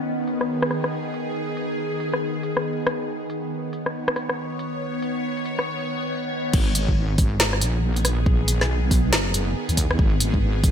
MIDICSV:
0, 0, Header, 1, 4, 480
1, 0, Start_track
1, 0, Key_signature, 5, "minor"
1, 0, Tempo, 431655
1, 1508, Time_signature, 4, 2, 24, 8
1, 11913, End_track
2, 0, Start_track
2, 0, Title_t, "Synth drone"
2, 0, Program_c, 0, 95
2, 0, Note_on_c, 0, 51, 76
2, 0, Note_on_c, 0, 59, 70
2, 0, Note_on_c, 0, 68, 84
2, 3419, Note_off_c, 0, 68, 0
2, 3430, Note_on_c, 0, 73, 82
2, 7223, Note_off_c, 0, 51, 0
2, 7223, Note_off_c, 0, 59, 0
2, 7260, Note_off_c, 0, 73, 0
2, 7266, Note_on_c, 0, 51, 81
2, 7266, Note_on_c, 0, 59, 73
2, 7266, Note_on_c, 0, 68, 87
2, 11913, Note_off_c, 0, 51, 0
2, 11913, Note_off_c, 0, 59, 0
2, 11913, Note_off_c, 0, 68, 0
2, 11913, End_track
3, 0, Start_track
3, 0, Title_t, "Wobble bass"
3, 0, Program_c, 1, 39
3, 7268, Note_on_c, 1, 32, 101
3, 8465, Note_on_c, 1, 34, 91
3, 8482, Note_off_c, 1, 32, 0
3, 9574, Note_on_c, 1, 35, 86
3, 9590, Note_off_c, 1, 34, 0
3, 10148, Note_on_c, 1, 30, 86
3, 10165, Note_off_c, 1, 35, 0
3, 10616, Note_off_c, 1, 30, 0
3, 10776, Note_on_c, 1, 39, 101
3, 11096, Note_off_c, 1, 39, 0
3, 11108, Note_on_c, 1, 32, 103
3, 11913, Note_off_c, 1, 32, 0
3, 11913, End_track
4, 0, Start_track
4, 0, Title_t, "Drums"
4, 306, Note_on_c, 9, 42, 70
4, 417, Note_off_c, 9, 42, 0
4, 455, Note_on_c, 9, 37, 53
4, 566, Note_off_c, 9, 37, 0
4, 694, Note_on_c, 9, 37, 75
4, 786, Note_off_c, 9, 37, 0
4, 786, Note_on_c, 9, 37, 50
4, 786, Note_on_c, 9, 42, 69
4, 897, Note_off_c, 9, 37, 0
4, 897, Note_off_c, 9, 42, 0
4, 934, Note_on_c, 9, 37, 59
4, 1045, Note_off_c, 9, 37, 0
4, 1267, Note_on_c, 9, 42, 74
4, 1378, Note_off_c, 9, 42, 0
4, 1746, Note_on_c, 9, 42, 70
4, 1857, Note_off_c, 9, 42, 0
4, 2135, Note_on_c, 9, 42, 31
4, 2226, Note_off_c, 9, 42, 0
4, 2226, Note_on_c, 9, 42, 69
4, 2337, Note_off_c, 9, 42, 0
4, 2374, Note_on_c, 9, 37, 54
4, 2485, Note_off_c, 9, 37, 0
4, 2705, Note_on_c, 9, 42, 72
4, 2817, Note_off_c, 9, 42, 0
4, 2854, Note_on_c, 9, 37, 62
4, 2966, Note_off_c, 9, 37, 0
4, 3186, Note_on_c, 9, 37, 81
4, 3186, Note_on_c, 9, 42, 73
4, 3298, Note_off_c, 9, 37, 0
4, 3298, Note_off_c, 9, 42, 0
4, 3667, Note_on_c, 9, 42, 73
4, 3778, Note_off_c, 9, 42, 0
4, 4148, Note_on_c, 9, 42, 75
4, 4259, Note_off_c, 9, 42, 0
4, 4295, Note_on_c, 9, 37, 54
4, 4406, Note_off_c, 9, 37, 0
4, 4536, Note_on_c, 9, 37, 79
4, 4628, Note_off_c, 9, 37, 0
4, 4628, Note_on_c, 9, 37, 53
4, 4628, Note_on_c, 9, 42, 73
4, 4739, Note_off_c, 9, 37, 0
4, 4739, Note_off_c, 9, 42, 0
4, 4775, Note_on_c, 9, 37, 63
4, 4886, Note_off_c, 9, 37, 0
4, 5108, Note_on_c, 9, 42, 77
4, 5219, Note_off_c, 9, 42, 0
4, 5587, Note_on_c, 9, 42, 76
4, 5699, Note_off_c, 9, 42, 0
4, 5974, Note_on_c, 9, 42, 35
4, 6066, Note_off_c, 9, 42, 0
4, 6066, Note_on_c, 9, 42, 76
4, 6177, Note_off_c, 9, 42, 0
4, 6213, Note_on_c, 9, 37, 53
4, 6324, Note_off_c, 9, 37, 0
4, 7267, Note_on_c, 9, 49, 107
4, 7268, Note_on_c, 9, 36, 125
4, 7378, Note_off_c, 9, 49, 0
4, 7379, Note_off_c, 9, 36, 0
4, 7507, Note_on_c, 9, 42, 85
4, 7618, Note_off_c, 9, 42, 0
4, 7656, Note_on_c, 9, 36, 63
4, 7767, Note_off_c, 9, 36, 0
4, 7986, Note_on_c, 9, 46, 98
4, 7988, Note_on_c, 9, 36, 108
4, 8097, Note_off_c, 9, 46, 0
4, 8099, Note_off_c, 9, 36, 0
4, 8227, Note_on_c, 9, 38, 120
4, 8338, Note_off_c, 9, 38, 0
4, 8374, Note_on_c, 9, 37, 52
4, 8467, Note_on_c, 9, 42, 86
4, 8485, Note_off_c, 9, 37, 0
4, 8578, Note_off_c, 9, 42, 0
4, 8856, Note_on_c, 9, 42, 39
4, 8949, Note_off_c, 9, 42, 0
4, 8949, Note_on_c, 9, 37, 53
4, 8949, Note_on_c, 9, 42, 85
4, 9060, Note_off_c, 9, 37, 0
4, 9060, Note_off_c, 9, 42, 0
4, 9188, Note_on_c, 9, 36, 127
4, 9299, Note_off_c, 9, 36, 0
4, 9428, Note_on_c, 9, 42, 85
4, 9540, Note_off_c, 9, 42, 0
4, 9578, Note_on_c, 9, 37, 52
4, 9578, Note_on_c, 9, 38, 39
4, 9690, Note_off_c, 9, 37, 0
4, 9690, Note_off_c, 9, 38, 0
4, 9908, Note_on_c, 9, 36, 110
4, 9909, Note_on_c, 9, 46, 96
4, 10019, Note_off_c, 9, 36, 0
4, 10020, Note_off_c, 9, 46, 0
4, 10148, Note_on_c, 9, 38, 121
4, 10259, Note_off_c, 9, 38, 0
4, 10388, Note_on_c, 9, 42, 85
4, 10499, Note_off_c, 9, 42, 0
4, 10775, Note_on_c, 9, 42, 39
4, 10868, Note_off_c, 9, 42, 0
4, 10868, Note_on_c, 9, 36, 67
4, 10868, Note_on_c, 9, 42, 88
4, 10979, Note_off_c, 9, 36, 0
4, 10979, Note_off_c, 9, 42, 0
4, 11016, Note_on_c, 9, 37, 60
4, 11108, Note_on_c, 9, 36, 126
4, 11127, Note_off_c, 9, 37, 0
4, 11219, Note_off_c, 9, 36, 0
4, 11347, Note_on_c, 9, 42, 85
4, 11458, Note_off_c, 9, 42, 0
4, 11495, Note_on_c, 9, 36, 65
4, 11606, Note_off_c, 9, 36, 0
4, 11827, Note_on_c, 9, 46, 90
4, 11828, Note_on_c, 9, 36, 109
4, 11913, Note_off_c, 9, 36, 0
4, 11913, Note_off_c, 9, 46, 0
4, 11913, End_track
0, 0, End_of_file